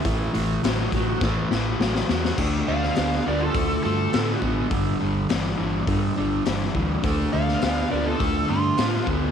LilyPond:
<<
  \new Staff \with { instrumentName = "Lead electric guitar" } { \time 4/4 \key d \minor \tempo 4 = 103 r1 | r8 f''4 d''16 a'8. a'4 r8 | r1 | r8 f''4 d''16 a'8. f'4 r8 | }
  \new Staff \with { instrumentName = "Lead electric guitar" } { \time 4/4 \key d \minor e''4. r2 r8 | r8 d''4 bes'16 f'8. f'4 r8 | r1 | r8 d''4 bes'16 f'8. d'4 r8 | }
  \new Staff \with { instrumentName = "Overdriven electric guitar" } { \clef bass \time 4/4 \key d \minor <a, e>8 <a, e>8 <a, fis>8 <a, fis>8 <a, e>8 <a, e>8 <a, fis>8 <a, fis>8 | <d a>8 <d a>8 <d b>8 <d b>8 <d a>8 <d a>8 <d b>8 <d b>8 | <g, d>8 <g, d>8 <g, e>8 <g, e>8 <g, d>8 <g, d>8 <g, e>8 <g, e>8 | <d a>8 <d a>8 <d b>8 <d b>8 <d a>8 <d a>8 <d b>8 <d b>8 | }
  \new Staff \with { instrumentName = "Fingered electric bass" } { \clef bass \time 4/4 \key d \minor a,,8 a,,8 a,,8 a,,8 a,8 a,,8 a,,8 e,8 | d,8 d,8 d,8 d,8 d,8 g,8 a,8 a,,8 | g,,8 g,,8 g,,8 g,,8 g,8 g,,8 g,,8 d,8 | d,8 d,8 d,8 d,8 d,8 g,8 a,8 d,8 | }
  \new DrumStaff \with { instrumentName = "Drums" } \drummode { \time 4/4 <hho bd>8 hho8 <hho sn>8 <hho bd>8 <bd sn>8 sn8 sn16 sn16 sn16 sn16 | <cymc bd>8. sn16 <hho sn>16 sn8. <hho bd>4 <hho sn>8 bd8 | <hho bd>4 <hho sn>4 <hho bd>4 <hho sn>8 bd8 | <hho bd>8. sn16 <hho sn>4 <hho bd>4 <hho sn>8 bd8 | }
>>